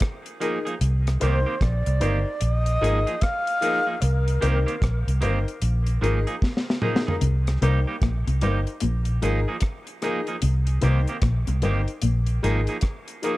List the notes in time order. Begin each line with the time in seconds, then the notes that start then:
0.00 kick, cross-stick, closed hi-hat
0.26 closed hi-hat
0.40 F3 A#3 D#4 G#4 A#4, closed hi-hat
0.65 F3 A#3 D#4 G#4, closed hi-hat
0.81 C2, closed hi-hat
1.07 cross-stick, closed hi-hat
1.20 C2 D#3 A#3 C4 D#4 G4 A#4 C5, closed hi-hat
1.46 D#3 A#3 C4 G4
1.61 A#1 D5, kick, cross-stick, closed hi-hat
1.86 C2, closed hi-hat
2.00 G1 D#3 A#3 C4 D#4 G4 A#4 C5, closed hi-hat
2.41 A#1 D#5, closed hi-hat
2.66 closed hi-hat
2.81 G#1 F3 A#3 D#4 G#4 A#4, closed hi-hat
3.07 F3 A#3 D#4 G#4, closed hi-hat
3.21 F5, kick, cross-stick, closed hi-hat
3.47 closed hi-hat
3.61 F3 A#3 D#4 G#4 A#4, closed hi-hat
3.87 F3 A#3 D#4 G#4
4.02 C2 A#4, closed hi-hat
4.28 closed hi-hat
4.41 C2 D#3 A#3 C4 D#4 G4 A#4 C5, closed hi-hat
4.66 D#3 A#3 C4 G4, closed hi-hat
4.82 A#1, kick, cross-stick, closed hi-hat
5.07 C2, closed hi-hat
5.21 G1 D#3 A#3 C4 D#4 G4 A#4 C5, closed hi-hat
5.48 closed hi-hat
5.62 A#1, closed hi-hat
5.87 closed hi-hat
6.01 G#1 F3 A#3 D#4 G#4 A#4, closed hi-hat
6.27 F3 A#3 D#4 G#4, closed hi-hat
6.42 kick, snare
6.57 snare
6.70 snare
6.82 F3 A#3 D#4 G#4 A#4, mid tom
6.96 snare
7.07 F3 A#3 D#4 G#4 A#4, floor tom
7.21 C2 C3, closed hi-hat
7.47 cross-stick, closed hi-hat
7.61 C2 C3 G3 A#3 D#4 G4 A#4 C5, closed hi-hat
7.87 G3 A#3 D#4 G4
8.02 A#1 A#2, kick, cross-stick, closed hi-hat
8.27 C2 C3, closed hi-hat
8.41 G1 G2 G3 A#3 D#4 G4 A#4 C5, closed hi-hat
8.67 closed hi-hat
8.80 A#1 A#2, closed hi-hat
9.05 closed hi-hat
9.22 G#1 G#2 F3 A#3 D#4 G#4 A#4, closed hi-hat
9.48 F3 A#3 D#4 G#4
9.61 kick, cross-stick, closed hi-hat
9.87 closed hi-hat
10.02 F3 A#3 D#4 G#4 A#4, cross-stick, closed hi-hat
10.27 F3 A#3 D#4 G#4, closed hi-hat
10.42 C2 C3, closed hi-hat
10.67 closed hi-hat
10.81 C2 C3 D#3 A#3 C4 D#4 G4 A#4 C5, closed hi-hat
11.07 D#3 A#3 C4 G4, closed hi-hat
11.22 A#1 A#2, kick, cross-stick, closed hi-hat
11.47 C2 C3, closed hi-hat
11.62 G1 G2 D#3 A#3 C4 D#4 G4 A#4 C5, closed hi-hat
11.88 closed hi-hat
12.02 A#1 A#2, closed hi-hat
12.26 closed hi-hat
12.43 G#1 G#2 F3 A#3 D#4 G#4 A#4, closed hi-hat
12.67 F3 A#3 D#4 G#4, closed hi-hat
12.81 kick, cross-stick, closed hi-hat
13.08 closed hi-hat
13.22 F3 A#3 D#4 G#4 A#4, closed hi-hat